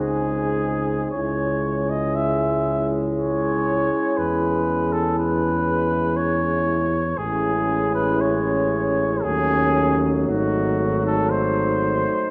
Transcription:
0.00 1.11 C#2 soft
0.00 1.11 G#3 soft
0.00 1.16 C4 soft
0.00 1.11 D#4 soft
0.00 1.11 G#4 medium
1.11 6.91 C#4 soft
1.11 7.02 E4 soft
1.11 1.92 C#5 soft
1.15 3.90 C#2 soft
1.15 6.87 G#3 soft
1.90 2.17 D#5 soft
2.15 2.92 E5 medium
3.17 4.19 C#5 medium
4.18 7.14 E2 soft
4.18 4.94 B4 medium
4.93 5.18 A4 medium
5.19 6.18 B4 medium
6.16 7.19 C#5 medium
7.17 9.21 A1 soft
7.17 9.27 G#3 soft
7.17 9.26 C#4 soft
7.17 9.21 E4 soft
7.17 7.94 G#4 medium
7.95 8.22 B4 medium
8.21 9.24 C#5 medium
9.23 10.26 D#2 medium
9.23 12.31 F#3 soft
9.23 12.31 A3 medium
9.23 10.28 C#4 soft
9.23 9.99 G#4 medium
10.26 12.05 G#1 medium
10.26 12.31 D#4 soft
10.26 11.02 F#4 medium
11.06 11.31 A4 medium
11.30 12.31 C5 medium

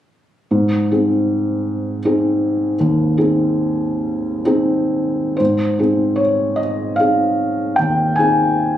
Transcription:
0.51 0.89 G#2 soft
0.91 2.00 C4 soft
0.91 1.99 D#4 soft
0.91 2.00 G#4 soft
2.05 2.75 C4 soft
2.05 2.75 D#4 soft
2.05 2.75 G#4 soft
2.80 3.17 D#2 soft
3.17 4.42 C4 soft
3.17 4.42 D#4 soft
3.17 4.42 G#4 soft
4.45 5.35 C4 soft
4.45 5.36 D#4 soft
4.45 5.36 G#4 soft
5.37 5.78 G#2 soft
5.37 6.19 C5 medium
5.79 6.95 C4 soft
5.79 6.96 D#4 soft
5.79 6.96 G#4 soft
6.16 6.58 C#5 medium
6.56 6.97 D#5 medium
6.96 7.75 C4 soft
6.96 7.75 D#4 soft
6.96 7.77 F5 medium
7.00 7.75 G#4 soft
7.76 8.17 D#2 soft
7.76 8.16 G5 medium
8.16 8.78 C4 soft
8.16 8.78 D#4 soft
8.16 8.78 G#4 soft
8.16 8.78 G#5 medium

